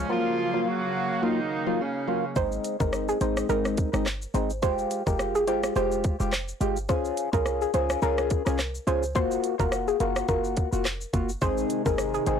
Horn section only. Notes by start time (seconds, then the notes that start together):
0.10 F3 F4
0.60 F3 F4
0.67 F#3 F#4
1.23 D#3 D#4
1.80 C#3 C#4